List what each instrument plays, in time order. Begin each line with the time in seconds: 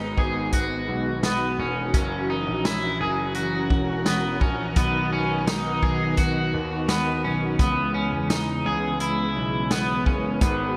Already playing: grand piano G#1, string machine D#3 G#3 B3 F#4, clean electric guitar D#4
0.18 grand piano G#1, clean electric guitar G#4, kick
0.52 clean electric guitar F#4, kick, closed hi-hat
0.89 grand piano B1
1.23 clean electric guitar B3, snare, closed hi-hat
1.59 grand piano E1, clean electric guitar C#4
1.94 grand piano F#1, string machine E3 C#4 A#4, clean electric guitar C#4, kick, closed hi-hat
2.30 clean electric guitar D#4
2.47 grand piano A#1
2.65 clean electric guitar E4, snare, closed hi-hat
3.00 grand piano F#1, clean electric guitar G#4
3.35 clean electric guitar F#4, closed hi-hat
3.70 grand piano E1, kick
4.06 clean electric guitar B3, snare, closed hi-hat
4.41 grand piano A#1, clean electric guitar C#4, kick
4.76 grand piano B1, string machine D#3 B3, clean electric guitar B3, kick, closed hi-hat
5.12 clean electric guitar C#4
5.47 clean electric guitar D#4, snare, closed hi-hat
5.83 grand piano B1, clean electric guitar G#4, kick
6.17 clean electric guitar F#4, kick, closed hi-hat
6.54 grand piano D#2
6.88 clean electric guitar B3, snare, closed hi-hat
7.24 grand piano B1, clean electric guitar C#4
7.58 grand piano C#2, string machine C#3 E3 G#3 B3, clean electric guitar B3, kick, closed hi-hat
7.94 clean electric guitar C#4
8.12 grand piano E2
8.30 clean electric guitar D#4, snare, closed hi-hat
8.66 grand piano C#2, clean electric guitar G#4
9.00 clean electric guitar E4, closed hi-hat
9.36 grand piano B1
9.71 clean electric guitar B3, snare, closed hi-hat
10.06 grand piano F#1, clean electric guitar C#4, kick
10.40 grand piano G#1, string machine D#3 F#4, clean electric guitar B3, kick, closed hi-hat